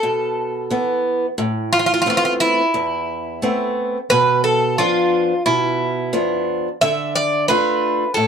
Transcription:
Already playing: A4
0.03 B2
0.70 E3 B3
1.38 A2
1.73 F4
1.79 F4
1.86 F4
1.94 F4
2.02 F4
2.06 A3 B3 C4 F4
2.17 F4
2.25 F4
2.40 E4
2.74 E2
3.42 A3 B3 C4
4.10 B2 B4
4.44 A4
4.78 F3 B3 D4 F4
5.46 B2 E4
6.13 F3 B3 D4
6.81 D3 E5
7.16 D5
7.48 A3 D4 F4 B4
8.14 A2 A4

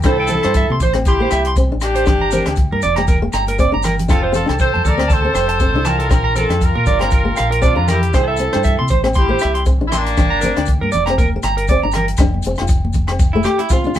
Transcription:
0.03 C2 D4 E4 A4 C5, kick, cross-stick, closed hi-hat, low agogo, maracas
0.20 G5
0.27 C4, closed hi-hat, low conga, maracas
0.43 G2 D4 C5, cross-stick, closed hi-hat, low agogo
0.54 E5, kick, closed hi-hat, maracas
0.70 C3 C6, high conga
0.80 A1 C5, kick, closed hi-hat, low conga, maracas
0.93 C4, cross-stick, closed hi-hat, high conga, low agogo
1.05 E4 G4 C6, kick, closed hi-hat, maracas
1.20 A#3 C5
1.31 C2 E5, cross-stick, closed hi-hat, low agogo, maracas
1.45 C6, closed hi-hat
1.56 C4, kick, closed hi-hat, maracas
1.72 A1 D4
1.80 D4 G4, cross-stick, closed hi-hat, low agogo, maracas
1.95 C5, closed hi-hat, maracas
2.05 G1 D4, kick, cross-stick, closed hi-hat, low conga, low agogo, maracas
2.21 A#5
2.31 C4 A#4, closed hi-hat, low conga, maracas
2.45 D2 D4, cross-stick, closed hi-hat, low agogo, maracas
2.56 kick, closed hi-hat, maracas
2.72 G2 A#4, high conga
2.82 E1 D5, closed hi-hat, low conga, maracas
2.96 G3 A#5, cross-stick, closed hi-hat, high conga, low agogo, maracas
3.07 A#4, kick, closed hi-hat, high conga, maracas
3.22 A#3
3.33 G1 A#5, cross-stick, closed hi-hat, low agogo, maracas
3.47 A#4, closed hi-hat, high conga, maracas
3.58 C4 D5, kick, closed hi-hat, high conga, maracas
3.72 G1 D4 A#5, high conga
3.83 A#4, cross-stick, closed hi-hat, low conga, low agogo, maracas
3.98 closed hi-hat, low conga, maracas
4.08 F1 C4 D4 F4 A4, kick, cross-stick, closed hi-hat, low agogo, maracas
4.23 C5
4.32 C4 F4 A4, closed hi-hat, low conga, maracas
4.46 C2 D4 A4, cross-stick, closed hi-hat, low agogo
4.59 A4 C5, kick, closed hi-hat, maracas
4.74 F2 A5, high conga
4.85 D2 A4 A#4 D5, kick, closed hi-hat, low conga, maracas
4.98 C4, cross-stick, closed hi-hat, high conga, low agogo
5.08 A4 C5 A5, kick, closed hi-hat, maracas
5.22 C4 A4
5.34 F1 C5, cross-stick, closed hi-hat, low agogo, maracas
5.49 A5, closed hi-hat
5.60 C4, kick, closed hi-hat, maracas
5.74 C2 D4
5.85 F4 A#4 A5, cross-stick, closed hi-hat, low conga, low agogo, maracas
5.99 A4, closed hi-hat, maracas
6.10 A#1 D4, kick, cross-stick, closed hi-hat, low agogo, maracas
6.24 A#5
6.35 C4 F4 A4 A#4, closed hi-hat, low conga, maracas
6.49 F2 D4, cross-stick, closed hi-hat, low agogo
6.61 F4 A#4, kick, closed hi-hat, maracas
6.75 A#2 A#4, high conga
6.86 G1 D5, kick, closed hi-hat, low conga, maracas
6.99 C4 A#5, cross-stick, closed hi-hat, high conga, low agogo
7.11 A#4, kick, closed hi-hat, maracas
7.25 A#3
7.36 F5, cross-stick, closed hi-hat, low agogo, maracas
7.40 A#1
7.51 A#4, closed hi-hat
7.62 C4 D4 F4 D5, kick, closed hi-hat, maracas
7.76 F2 D4 A#5
7.88 E4 G4 A#4, cross-stick, closed hi-hat, low conga, low agogo, maracas
8.03 closed hi-hat, maracas
8.13 C2 D4 E4 A4 C5, kick, cross-stick, closed hi-hat, low agogo, maracas
8.28 E5
8.37 C4, closed hi-hat, maracas
8.53 G2 D4 C5, cross-stick, closed hi-hat, low agogo
8.63 E5, kick, closed hi-hat, maracas
8.79 C3 C6, high conga
8.88 A1 C5, kick, closed hi-hat, low conga, maracas
9.04 C4, cross-stick, closed hi-hat, high conga, low agogo
9.14 G4 C6, kick, closed hi-hat, maracas
9.18 E4
9.29 A#3 C5
9.39 E5, cross-stick, closed hi-hat, low agogo, maracas
9.45 C2
9.54 C6, closed hi-hat
9.66 C4, kick, closed hi-hat, maracas
9.81 A1 D4
9.87 E4
9.92 A#3 D4 C6, cross-stick, closed hi-hat, low conga, low agogo, maracas
10.06 closed hi-hat, maracas
10.17 G1 D4, kick, cross-stick, closed hi-hat, low conga, low agogo, maracas
10.30 A#5
10.41 C4 A#4, closed hi-hat, high conga, low conga, maracas
10.56 D2 D4, cross-stick, closed hi-hat, low agogo, maracas
10.66 kick, closed hi-hat, maracas
10.81 G2 A#4, high conga
10.92 E1 D5, closed hi-hat, low conga, maracas
11.06 C4 A#5, cross-stick, closed hi-hat, high conga, low agogo, maracas
11.18 A#4, kick, closed hi-hat, high conga, maracas
11.36 A#3
11.43 G1 A#5, cross-stick, closed hi-hat, low agogo, maracas
11.57 A#4, closed hi-hat
11.68 C4 D5, kick, closed hi-hat, maracas
11.83 G1 D4 A#5, high conga
11.92 A#4, cross-stick, closed hi-hat, low agogo, maracas
11.96 low conga
12.08 closed hi-hat
12.17 F1 D4, kick, cross-stick, closed hi-hat, low agogo, maracas
12.34 high conga
12.42 F1, closed hi-hat, maracas
12.47 C4
12.55 cross-stick, closed hi-hat, low agogo, maracas
12.60 F1 F4
12.68 kick, closed hi-hat, maracas
12.85 high conga
12.93 kick, closed hi-hat, low conga, maracas
13.07 C4, cross-stick, closed hi-hat, low agogo
13.19 kick, closed hi-hat, maracas
13.33 A3 E4
13.43 G4, cross-stick, closed hi-hat, high conga, low agogo, maracas
13.59 E4, closed hi-hat
13.69 C4 F4, kick, closed hi-hat, maracas
13.84 D4, high conga, maracas
13.95 high conga, low conga, low agogo, maracas

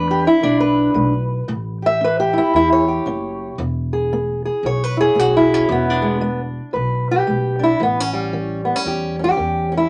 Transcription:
Already playing: E2 G#3 D4 B4
0.11 G4
0.27 E4
0.41 B1 E2 D4
0.60 B4
0.94 B1 G#3
1.48 A1 A2
1.82 G4 E5
2.01 C#4 B4
2.20 G4
2.33 E4
2.38 E4
2.54 E2 E4
2.73 C#5
2.88 G4
3.06 F#1 C#4
3.58 E1 E2
3.93 G#4
4.13 B3
4.45 G#4
4.63 B1 E2 C#5
4.84 B4
4.97 E4 G#4
5.15 B1 B3
5.19 F#4
5.37 E4
5.54 C#4
5.69 E1 E2 B3
5.90 D4
6.02 G#3
6.21 G#3
6.73 B1 E2 B4
7.11 G4
7.27 B1 G#3
7.59 D4
7.63 E4
7.80 A1 A2 B3
8.00 C#4
8.13 G3
8.33 E3
8.65 B3
8.76 C#4
8.85 E2 G4
9.19 C#4
9.24 G4
9.37 E2 E3
9.72 C#4
9.77 E4

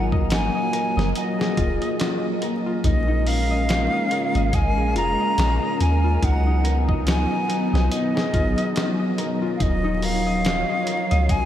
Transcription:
Already playing: G#1 F#3 A#3 D#4 F4 G#4 A#4 D#5
0.12 D#5, kick
0.30 F4 G#5, snare, closed hi-hat
0.55 D#5
0.73 A#4, closed hi-hat
0.97 F#1 D#5, snare
1.15 D#5, closed hi-hat
1.39 G#4, snare
1.57 D#1 F4, kick, closed hi-hat
1.82 D#5, closed hi-hat
2.00 F4, snare, closed hi-hat
2.24 D#5
2.42 A#4, closed hi-hat
2.66 F4
2.84 A#1 G#3 C#4 D#4 A#4 D#5, kick, closed hi-hat
3.08 D#4
3.26 A#4 F5, open hi-hat
3.51 D#5
3.69 F4, snare, closed hi-hat
3.93 D#5
4.11 A#4, closed hi-hat
4.35 G#1 D#5, closed hi-hat
4.53 D#5 G#5, kick, closed hi-hat
4.77 A#1 G#4
4.95 F1 F4 A#5, closed hi-hat
5.20 D#5
5.38 A#1 F4, snare, closed hi-hat
5.62 D#5
5.80 D#2 A#4 G#5, closed hi-hat
6.04 F4
6.22 C#2 F#3 B3 D#4 F#5, kick, closed hi-hat
6.47 D#4
6.64 A#4, closed hi-hat
6.88 D#5, kick
7.07 F4 G#5, snare, closed hi-hat
7.31 D#5
7.49 A#4, closed hi-hat
7.73 B1 D#5, snare
7.91 D#5, closed hi-hat
8.15 G#4, snare
8.33 G#1 F4, kick, closed hi-hat
8.57 D#5, closed hi-hat
8.76 F4, snare, closed hi-hat
8.99 D#5
9.18 A#4, closed hi-hat
9.42 F4
9.56 D#4 F4 C#5 F5
9.60 D#1 D#5, kick, closed hi-hat
9.84 D#4
10.02 A#4 F5, open hi-hat
10.27 D#5
10.45 F4, snare, closed hi-hat
10.69 D#5
10.87 A#4, closed hi-hat
11.11 C#2 D#5, closed hi-hat
11.29 D#5 G#5, kick, closed hi-hat

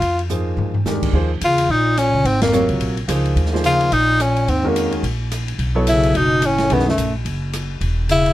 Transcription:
Already playing: F4
0.01 F2, ride
0.19 ride
0.30 F3 A#3 D#4 G#4 C5, floor tom, hi-hat pedal
0.57 G#2, floor tom
0.74 floor tom
0.85 E2 D#3 G#3 D4 G4 A#4, snare, hi-hat pedal
1.03 kick, crash
1.13 D#2 F3 A#3 D#4 G#4 C5
1.41 E2 C#3 F4, hi-hat pedal, ride
1.58 ride
1.69 A#1 A#2 D#4
1.97 A#2 C#4, cross-stick, hi-hat pedal, ride
2.14 C#2
2.24 G#1 G#2 C4, ride
2.41 F2 A#3, snare, ride
2.53 C3 F#3 F4 A#4 C#5, hi-hat pedal
2.69 C#2, kick, ride
2.80 A#1, ride
2.97 ride
3.08 C#2 F3 A#3 D#4 G#4 C5, cross-stick, hi-hat pedal, ride
3.25 ride
3.36 D#2, ride
3.46 snare
3.52 F3 A#3 D#4 G#4 C5, snare
3.64 C#3 F4, hi-hat pedal, ride
3.81 ride
3.91 A#1 A#2 D#4, ride
4.20 A#2 C#4, cross-stick, hi-hat pedal, ride
4.37 ride
4.48 D#2 G#2 C4, ride
4.64 F2 D#3 G#3 C#4 F#4 A#4
4.68 A#3
4.76 hi-hat pedal, ride
4.92 ride
5.03 A#1, ride
5.31 cross-stick, hi-hat pedal, ride
5.48 ride
5.59 B1, ride
5.75 F#3 B3 E4 A4 C#5
5.87 C#3 E4, hi-hat pedal, ride
6.03 ride
6.14 F#1 B2 D#4, ride
6.42 A2, cross-stick, hi-hat pedal, ride
6.46 C#4
6.58 snare, ride
6.70 B1 F#2 E3 A3 B3 D#4 G#4 B4, ride
6.79 snare
6.88 F#2 A3, snare
6.98 A#1, hi-hat pedal, ride
7.25 F#1, ride
7.53 cross-stick, hi-hat pedal, ride
7.81 E1, ride
8.09 C#3 E4, hi-hat pedal, ride
8.26 ride

